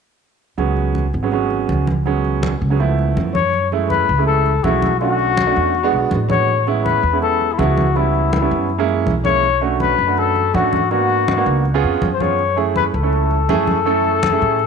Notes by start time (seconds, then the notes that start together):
0.58 C#2 F#3 G#3 B3 C#4, high conga
0.77 high conga
0.95 high conga
1.13 G#1, high conga
1.22 F#3 G#3 B3 C#4
1.32 F#3 G#3 B3 C#4, high conga
1.50 high conga
1.69 C#2, high conga
1.87 high conga
2.05 F#3 G#3 B3 C#4, high conga
2.25 high conga
2.43 high conga
2.61 C#2, high conga
2.70 F#3 G#3 B3 C#4
2.79 F3 A3 B3 E4, high conga
2.99 high conga
3.17 F#2, high conga
3.35 C#5, high conga
3.54 high conga
3.72 G#3 A3 C#4 E4, high conga
3.90 B4, high conga
4.09 C#2, high conga
4.18 G#3 A3 C#4 E4
4.27 A4, high conga
4.46 high conga
4.64 B1 G#3 A3 C#4 E4 F#4, high conga
4.82 high conga
5.00 A3 C#4 D4 F#4, high conga
5.19 high conga
5.37 high conga
5.46 A3 C#4 D4 F#4
5.56 E2, high conga
5.75 high conga
5.83 G#3 B3 D4 F#4
5.93 B1, high conga
6.11 A1, high conga
6.29 G#3 B3 D4 F#4 C#5, high conga
6.48 high conga
6.67 G#3 B3 C#4 E4, high conga
6.84 B4, high conga
7.03 E2, high conga
7.12 G#3 B3 C#4 E4
7.22 A4, high conga
7.41 high conga
7.53 E4
7.58 C#2 G#3 B3 C#4 E4 F#4, high conga
7.77 high conga
7.95 G3 B3 C#4 E4, high conga
8.15 high conga
8.33 high conga
8.41 G3 B3 C#4 E4
8.51 F#2, high conga
8.70 high conga
8.78 G#3 A#3 C#4 E4
8.88 high conga
9.06 B1, high conga
9.25 G#3 A#3 C#4 E4 C#5, high conga
9.43 high conga
9.61 A3 C#4 D4 F#4, high conga
9.80 B4, high conga
9.98 F#2, high conga
10.07 A3 C#4 D4 F#4
10.17 A4, high conga
10.36 high conga
10.54 G#2 A3 C#4 D4 F#4, high conga
10.73 high conga
10.91 A#3 B3 D4 F#4, high conga
11.10 high conga
11.28 high conga
11.37 A#3 B3 D4 F#4
11.46 C#2, high conga
11.65 high conga
11.74 B3 C#4 F4 G#4
11.83 F2, high conga
12.02 F#2, high conga
12.14 C5
12.20 B3 C#4 F4 G#4 C#5, high conga
12.39 high conga
12.56 A3 C#4 E4 G#4, high conga
12.76 B4, high conga
12.94 C#2 A4, high conga
13.03 A3 C#4 E4 A4
13.13 high conga
13.31 high conga
13.49 F#2 A3 C#4 E4 G#4, high conga
13.67 high conga
13.85 A3 C#4 E4 A4, high conga
14.05 high conga
14.23 high conga
14.31 A3 C#4 E4 G#4
14.41 A2, high conga
14.59 high conga